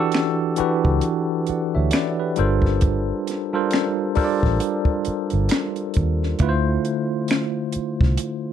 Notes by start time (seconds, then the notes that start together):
Already playing: E3 D4 F#4 G4 A4
0.12 finger snap, snare, closed hi-hat
0.56 E3 D4 F#4 G4 B4, muted fingered electric bass stroke, closed hi-hat
0.85 C#2, kick
1.01 closed hi-hat
1.47 D5 F#5, muted fingered electric bass stroke, closed hi-hat
1.75 D2 C#5 E5
1.91 B4 D5, finger snap, snare, closed hi-hat
2.20 G4 B4
2.36 G1 G3 D4 F4 A4 A#4 C5, closed hi-hat
2.62 kick, snare
2.81 kick, closed hi-hat
3.27 snare, closed hi-hat
3.53 G3 D4 F4 A4 A#4 C5
3.71 finger snap, snare, closed hi-hat
4.15 G3 D4 F4 A4 A#4 C5, muted fingered electric bass stroke, kick, open hi-hat
4.24 D5
4.43 A1, kick, snare
4.60 closed hi-hat
4.85 kick
5.05 muted fingered electric bass stroke, closed hi-hat
5.30 G1, closed hi-hat
5.49 finger snap, snare, closed hi-hat
5.76 closed hi-hat
5.94 D#2, kick, closed hi-hat
6.23 snare
6.39 D2 D3 A3 E4 F4 B4, kick, closed hi-hat
6.49 C5
6.85 closed hi-hat
7.28 finger snap, snare, closed hi-hat
7.72 muted fingered electric bass stroke, closed hi-hat
8.01 C2, kick, snare
8.18 closed hi-hat